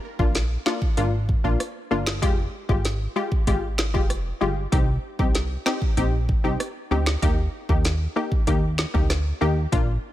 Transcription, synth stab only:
0.19 0.35 A#3 medium
0.19 0.35 D4 medium
0.19 0.35 F4 medium
0.66 0.81 A#3 medium
0.66 0.82 D4 medium
0.66 0.82 F4 medium
0.97 1.13 A#3 medium
0.97 1.13 D4 medium
0.97 1.13 F4 loud
1.44 1.60 A#3 medium
1.44 1.60 D4 medium
1.44 1.60 F4 medium
1.91 2.06 A#3 medium
1.91 2.07 D4 medium
1.91 2.07 F4 medium
2.22 2.38 G#3 loud
2.22 2.38 F4 medium
2.22 2.38 G4 loud
2.69 2.84 G#3 medium
2.69 2.85 F4 medium
2.69 2.85 G4 medium
3.16 3.31 G#3 medium
3.16 3.32 F4 medium
3.16 3.32 G4 medium
3.47 3.63 G#3 medium
3.47 3.63 F4 medium
3.47 3.63 G4 loud
3.94 4.10 G#3 medium
3.94 4.10 F4 medium
3.94 4.10 G4 medium
4.41 4.56 G#3 medium
4.41 4.57 F4 medium
4.41 4.57 G4 medium
4.72 4.88 C4 loud
4.72 4.88 D#4 medium
4.72 4.88 G4 loud
5.19 5.35 C4 medium
5.19 5.35 D#4 medium
5.19 5.35 G4 medium
5.66 5.81 C4 medium
5.66 5.82 D#4 medium
5.66 5.82 G4 medium
5.97 6.13 C4 medium
5.97 6.13 D#4 medium
5.97 6.13 G4 loud
6.44 6.60 C4 medium
6.44 6.60 D#4 medium
6.44 6.60 G4 medium
6.91 7.06 C4 medium
6.91 7.07 D#4 medium
6.91 7.07 G4 medium
7.22 7.38 A#3 loud
7.22 7.38 D#4 medium
7.22 7.38 G4 loud
7.69 7.85 A#3 medium
7.69 7.85 D#4 medium
7.69 7.85 G4 medium
8.16 8.31 A#3 medium
8.16 8.32 D#4 medium
8.16 8.32 G4 medium
8.47 8.63 A#3 medium
8.47 8.63 D#4 medium
8.47 8.63 G4 loud
8.94 9.10 A#3 medium
8.94 9.10 D#4 medium
8.94 9.10 G4 medium
9.41 9.56 A#3 medium
9.41 9.57 D#4 medium
9.41 9.57 G4 medium
9.72 9.88 A#3 loud
9.72 9.88 D4 medium
9.72 9.88 F4 loud

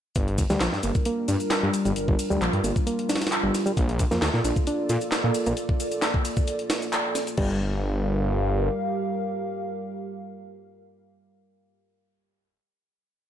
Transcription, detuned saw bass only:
0.16 0.43 G1 loud
0.50 0.57 D2 medium
0.61 0.68 A#1 loud
0.72 0.79 G2 medium
0.84 0.91 G1 medium
1.29 1.36 G2 medium
1.63 1.70 G2 loud
1.86 1.92 G1 medium
1.97 2.06 G1 soft
2.08 2.15 G1 medium
2.31 2.37 D2 medium
2.41 2.49 A#1 loud
2.53 2.60 G2 medium
2.64 2.71 G1 loud
3.44 3.50 G1 loud
3.77 4.04 A#1 loud
4.11 4.18 F2 medium
4.22 4.29 D2 loud
4.34 4.40 A#2 loud
4.44 4.52 A#1 medium
4.89 4.97 A#2 medium
5.24 5.31 A#2 loud
5.47 5.53 A#1 medium
7.38 8.69 G1 loud

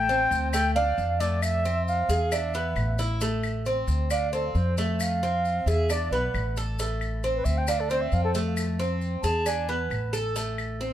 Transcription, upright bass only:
0.00 0.25 A1 loud
0.31 0.94 D2 loud
0.98 2.03 F2 loud
2.09 2.72 E2 loud
2.76 3.82 A1 loud
3.87 4.51 D2 loud
4.55 5.60 F2 medium
5.66 6.08 E2 medium
6.11 6.32 B1 medium
6.34 7.39 A1 medium
7.45 8.08 D2 loud
8.12 9.18 F2 medium
9.23 9.87 E2 medium
9.90 10.93 A1 medium

